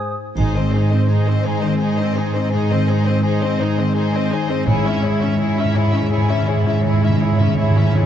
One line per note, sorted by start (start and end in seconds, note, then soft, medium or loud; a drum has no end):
0.00 0.15 G#2 soft
0.00 0.29 G#2 soft
0.00 1.27 D#4 soft
0.00 0.72 G#4 soft
0.00 0.15 C5 medium
0.00 2.03 D#5 soft
0.00 0.18 G#5 soft
0.00 0.15 D#6 soft
0.36 0.71 G#1 soft
0.36 4.63 G#2 soft
0.36 1.45 G#2 soft
0.36 0.54 D#4 soft
0.36 0.54 G#4 soft
0.36 0.54 C5 soft
0.36 triangle soft
0.55 1.62 D#3 soft
0.55 0.74 C4 soft
0.55 0.74 C5 soft
0.55 0.73 D#5 soft
0.72 0.92 D#4 soft
0.72 0.91 G#4 soft
0.72 1.09 G#4 soft
0.72 0.91 C5 soft
0.90 1.09 C4 soft
0.90 1.09 C5 soft
0.90 1.98 C5 soft
0.90 1.09 D#5 soft
1.06 1.26 D#4 soft
1.06 1.26 G#4 soft
1.06 1.80 G#4 soft
1.06 1.25 C5 soft
1.26 1.46 C4 soft
1.26 2.35 D#4 soft
1.26 1.45 C5 soft
1.26 1.45 D#5 soft
1.44 2.52 G#2 soft
1.44 1.63 D#4 soft
1.44 1.63 G#4 soft
1.44 1.63 C5 soft
1.60 2.70 D#3 soft
1.60 1.82 C4 soft
1.60 1.81 C5 soft
1.60 1.80 D#5 soft
1.79 1.98 D#4 soft
1.79 1.97 G#4 soft
1.79 2.16 G#4 soft
1.79 1.97 C5 soft
1.97 2.17 C4 soft
1.97 2.16 C5 soft
1.97 3.05 C5 soft
1.97 2.16 D#5 soft
2.16 2.35 D#4 soft
2.16 2.34 G#4 soft
2.16 2.87 G#4 soft
2.16 2.35 C5 soft
2.34 2.53 C4 soft
2.34 3.40 D#4 soft
2.34 2.53 C5 soft
2.34 2.53 D#5 soft
2.52 3.58 G#2 soft
2.52 2.70 D#4 soft
2.52 2.69 G#4 soft
2.52 2.69 C5 soft
2.71 3.77 D#3 soft
2.71 2.89 C4 soft
2.71 2.89 C5 soft
2.71 2.89 D#5 soft
2.87 3.07 D#4 soft
2.87 3.06 G#4 soft
2.87 3.22 G#4 soft
2.87 3.07 C5 soft
3.06 3.24 C4 soft
3.06 3.24 C5 soft
3.06 4.12 C5 soft
3.06 3.24 D#5 soft
3.24 3.41 D#4 soft
3.24 3.93 G#4 soft
3.24 3.41 G#4 soft
3.24 3.41 C5 soft
3.42 3.60 C4 soft
3.42 4.48 D#4 soft
3.42 3.60 C5 soft
3.42 3.60 D#5 soft
3.59 4.65 G#2 soft
3.59 3.78 D#4 soft
3.59 3.78 G#4 soft
3.59 3.78 C5 soft
3.78 4.69 D#3 soft
3.78 3.96 C4 soft
3.78 3.96 C5 soft
3.78 3.96 D#5 soft
3.94 4.12 D#4 soft
3.94 4.29 G#4 soft
3.94 4.13 G#4 soft
3.94 4.12 C5 soft
4.13 4.31 C4 soft
4.13 4.69 C5 soft
4.13 4.32 C5 soft
4.13 4.32 D#5 soft
4.30 4.50 D#4 soft
4.30 5.01 G#4 soft
4.30 4.49 G#4 soft
4.30 4.50 C5 soft
4.49 4.67 C4 soft
4.49 4.68 D#4 soft
4.49 4.68 C5 soft
4.49 4.67 D#5 soft
4.66 5.01 G#1 soft
4.66 5.73 G#2 medium
4.66 8.06 G#2 soft
4.66 4.84 E4 soft
4.66 4.84 G#4 soft
4.66 4.84 C#5 soft
4.75 4.81 G#2 soft
4.82 4.89 G#2 soft
4.82 5.92 G#3 soft
4.82 5.03 C#4 soft
4.82 5.03 E4 soft
4.82 5.03 E5 soft
5.02 5.11 G#2 soft
5.02 5.21 E4 soft
5.02 5.37 G#4 soft
5.02 5.21 G#4 soft
5.02 5.21 C#5 soft
5.12 5.18 G#2 soft
5.19 5.26 G#2 soft
5.19 5.39 C#4 soft
5.19 5.39 E4 soft
5.19 6.28 C#5 soft
5.19 5.39 E5 soft
5.27 5.33 G#2 soft
5.35 5.40 G#2 soft
5.35 6.10 G#4 soft
5.39 5.48 G#2 soft
5.39 5.56 E4 soft
5.39 5.56 G#4 soft
5.39 5.57 C#5 soft
5.49 5.56 G#2 soft
5.57 5.75 C#4 soft
5.57 6.65 E4 soft
5.57 5.76 E4 soft
5.57 5.76 E5 soft
5.65 5.71 G#2 soft
5.72 5.79 G#2 soft
5.72 6.82 G#2 soft
5.72 5.93 E4 soft
5.72 5.93 G#4 soft
5.72 5.93 C#5 soft
5.80 5.86 G#2 soft
5.87 5.93 G#2 soft
5.93 6.01 G#2 soft
5.93 7.01 G#3 soft
5.93 6.11 C#4 soft
5.93 6.11 E4 soft
5.93 6.11 E5 soft
6.02 6.08 G#2 soft
6.10 6.16 G#2 soft
6.10 6.28 E4 soft
6.10 6.47 G#4 soft
6.10 6.28 G#4 soft
6.10 6.29 C#5 soft
6.17 6.23 G#2 soft
6.25 6.32 G#2 soft
6.25 6.47 C#4 soft
6.29 6.47 E4 soft
6.29 7.39 C#5 soft
6.29 6.48 E5 soft
6.33 6.40 G#2 soft
6.42 6.48 G#2 soft
6.47 6.55 G#2 soft
6.47 6.66 E4 soft
6.47 6.66 G#4 soft
6.47 7.19 G#4 soft
6.47 6.66 C#5 soft
6.57 6.62 G#2 soft
6.64 6.70 G#2 soft
6.64 6.85 C#4 soft
6.64 6.84 E4 soft
6.64 7.76 E4 soft
6.68 6.77 G#2 soft
6.68 6.86 E5 soft
6.78 6.85 G#2 soft
6.83 7.94 G#2 soft
6.83 6.92 G#2 soft
6.83 7.02 E4 soft
6.83 7.01 G#4 soft
6.83 7.01 C#5 soft
6.93 7.00 G#2 soft
7.01 7.08 G#2 soft
7.01 8.06 G#3 soft
7.01 7.21 C#4 soft
7.01 7.21 E4 soft
7.01 7.22 E5 soft
7.09 7.15 G#2 soft
7.16 7.23 G#2 soft
7.20 7.30 G#2 soft
7.20 7.40 E4 soft
7.20 7.39 G#4 soft
7.20 7.56 G#4 soft
7.20 7.39 C#5 soft
7.32 7.38 G#2 soft
7.39 7.45 G#2 soft
7.39 7.58 C#4 soft
7.39 7.57 E4 soft
7.39 8.06 C#5 soft
7.39 7.58 E5 soft
7.47 7.53 G#2 soft
7.55 7.61 G#2 soft
7.55 8.06 G#4 soft
7.55 7.75 G#4 soft
7.55 7.75 C#5 soft
7.59 7.69 G#2 soft
7.59 7.76 E4 soft
7.70 7.77 G#2 medium
7.76 7.84 G#2 medium
7.76 7.94 C#4 soft
7.76 8.06 E4 soft
7.76 7.95 E4 soft
7.76 7.95 E5 soft
7.85 7.92 G#2 medium
7.93 7.99 G#2 soft
7.93 8.06 G#2 soft
7.93 8.06 E4 soft
7.93 8.06 G#4 soft
7.93 8.06 C#5 soft
8.01 8.06 G#2 medium